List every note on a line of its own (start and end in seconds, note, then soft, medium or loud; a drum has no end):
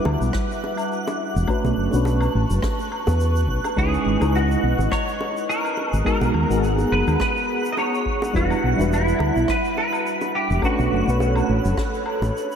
0.00 1.47 G3 medium
0.00 1.51 G3 loud
0.00 1.48 D4 medium
0.00 1.50 E4 medium
0.00 1.49 F#4 medium
0.00 1.50 B4 loud
0.00 1.47 E5 medium
0.00 1.45 F#5 medium
0.00 1.47 D6 medium
0.00 12.56 F#6 medium
0.05 0.15 D2 medium
0.05 high bongo medium
0.05 low woodblock medium
0.21 0.29 B1 medium
0.21 shaker medium
0.33 kick loud
0.33 cross-stick medium
0.33 shaker medium
0.51 shaker medium
0.64 high bongo medium
0.77 low woodblock medium
0.77 shaker medium
0.92 shaker medium
1.07 high bongo medium
1.07 shaker medium
1.36 1.44 E1 loud
1.36 shaker medium
1.47 1.88 A3 medium
1.47 1.89 C#4 medium
1.47 1.89 D4 medium
1.47 1.89 F#4 medium
1.47 5.74 B4 medium
1.47 1.90 B4 loud
1.47 3.75 A5 medium
1.47 5.73 C#6 medium
1.47 kick loud
1.47 low woodblock medium
1.47 shaker medium
1.64 1.72 B1 medium
1.64 high bongo medium
1.64 shaker medium
1.77 1.87 F#1 medium
1.90 2.27 B1 medium
1.90 3.73 A3 medium
1.90 3.73 C#4 medium
1.90 3.74 D4 medium
1.90 shaker medium
1.94 3.75 F#4 medium
1.94 3.75 B4 loud
2.05 high bongo medium
2.05 shaker medium
2.21 low woodblock medium
2.21 shaker soft
2.35 2.44 A1 medium
2.50 2.58 F#1 medium
2.50 shaker medium
2.63 kick loud
2.63 cross-stick medium
2.63 high bongo medium
2.63 shaker medium
2.80 shaker medium
2.92 low woodblock medium
3.07 3.49 E2 medium
3.07 high bongo medium
3.07 shaker medium
3.20 shaker medium
3.36 shaker medium
3.49 3.58 B1 medium
3.49 kick medium
3.64 high bongo medium
3.64 low woodblock medium
3.64 shaker medium
3.76 3.96 C#2 loud
3.76 4.17 G#3 loud
3.76 4.18 C#4 medium
3.76 4.18 D#4 medium
3.76 4.18 E4 medium
3.76 4.31 G#4 loud
3.76 4.18 B4 loud
3.76 5.75 D#5 medium
3.76 kick loud
3.76 high bongo soft
3.76 shaker medium
3.94 shaker soft
4.06 4.15 G#1 medium
4.20 4.55 C#2 medium
4.20 5.75 G#3 medium
4.20 5.75 C#4 medium
4.20 5.76 D#4 medium
4.20 5.77 E4 medium
4.20 high bongo medium
4.20 low woodblock medium
4.20 shaker medium
4.25 5.77 B4 loud
4.35 4.94 F#4 medium
4.35 shaker medium
4.51 shaker medium
4.63 4.73 B1 medium
4.79 4.87 G#1 medium
4.79 high bongo soft
4.79 shaker medium
4.92 5.49 C#5 loud
4.92 kick loud
4.92 cross-stick medium
4.92 low woodblock medium
4.92 shaker medium
5.08 shaker medium
5.21 high bongo medium
5.37 shaker medium
5.49 5.90 A#4 loud
5.49 shaker medium
5.65 low woodblock medium
5.65 shaker medium
5.77 8.32 B3 medium
5.77 8.32 G#4 medium
5.77 10.59 F#5 medium
5.77 8.32 A#5 medium
5.77 high bongo medium
5.90 6.01 G#1 medium
5.90 6.02 G#4 loud
5.90 shaker medium
6.05 6.46 G#3 loud
6.05 6.46 B3 medium
6.05 6.46 D#4 medium
6.05 6.47 F#4 medium
6.05 6.65 A#4 loud
6.05 6.47 A#4 loud
6.05 kick loud
6.05 shaker medium
6.21 6.29 B1 medium
6.21 high bongo medium
6.21 shaker medium
6.34 6.44 D#2 medium
6.34 low woodblock medium
6.48 6.84 G#1 medium
6.48 8.30 G#3 medium
6.48 8.31 B3 medium
6.48 8.31 D#4 medium
6.48 8.32 F#4 medium
6.48 shaker medium
6.53 8.33 G#4 loud
6.64 6.88 G#4 loud
6.64 shaker medium
6.78 high bongo medium
6.78 shaker soft
6.92 7.01 F#1 medium
6.92 7.19 B4 loud
7.07 7.15 D#2 medium
7.07 low woodblock medium
7.07 shaker medium
7.20 7.72 B4 loud
7.20 kick loud
7.20 cross-stick medium
7.20 high bongo medium
7.20 shaker medium
7.36 shaker medium
7.65 shaker medium
7.72 7.78 D#5 medium
7.77 8.19 C#5 loud
7.77 high bongo medium
7.77 low woodblock medium
7.77 shaker medium
7.94 shaker soft
8.06 kick medium
8.22 high bongo medium
8.22 shaker medium
8.33 8.53 E1 loud
8.33 8.74 G3 loud
8.33 10.61 G3 medium
8.33 8.75 D4 medium
8.33 8.75 E4 medium
8.33 8.75 F#4 medium
8.33 8.93 F#4 loud
8.33 8.76 B4 loud
8.33 10.61 E5 medium
8.33 kick loud
8.33 shaker medium
8.50 low woodblock medium
8.50 shaker medium
8.64 8.73 B1 medium
8.76 9.12 E1 medium
8.76 10.58 G3 loud
8.76 10.59 D4 medium
8.76 10.60 E4 medium
8.76 high bongo soft
8.80 10.61 F#4 medium
8.80 10.61 B4 loud
8.80 shaker medium
8.93 9.51 E4 medium
8.93 shaker medium
9.08 shaker medium
9.19 9.30 D2 medium
9.19 high bongo medium
9.19 low woodblock medium
9.36 9.44 B1 medium
9.36 shaker medium
9.48 9.76 B4 loud
9.48 kick loud
9.48 cross-stick medium
9.48 shaker medium
9.65 shaker medium
9.77 10.31 B4 loud
9.77 high bongo soft
9.93 low woodblock medium
9.93 shaker medium
10.06 shaker medium
10.21 high bongo medium
10.21 shaker soft
10.35 10.61 G4 medium
10.50 10.58 E1 medium
10.50 shaker medium
10.62 11.03 A3 loud
10.62 11.03 C#4 medium
10.62 11.03 D4 medium
10.62 11.04 F#4 medium
10.62 12.31 F#4 medium
10.62 12.56 A4 medium
10.62 11.04 B4 loud
10.62 12.56 C#5 medium
10.62 12.56 B5 medium
10.62 kick loud
10.62 low woodblock medium
10.62 shaker medium
10.79 10.87 B1 loud
10.79 high bongo medium
10.79 shaker soft
10.92 11.01 F#1 medium
11.04 11.41 B1 medium
11.04 12.56 A3 loud
11.04 12.56 C#4 medium
11.04 12.56 D4 medium
11.04 12.56 F#4 medium
11.09 12.56 B4 loud
11.09 shaker medium
11.20 high bongo medium
11.20 shaker medium
11.36 low woodblock medium
11.36 shaker medium
11.49 11.58 A1 medium
11.65 11.73 F#1 loud
11.65 shaker medium
11.77 kick loud
11.77 cross-stick medium
11.77 high bongo medium
11.77 shaker medium
11.94 shaker soft
12.06 low woodblock medium
12.22 12.29 A1 medium
12.22 high bongo medium
12.22 shaker medium
12.37 shaker medium
12.51 shaker medium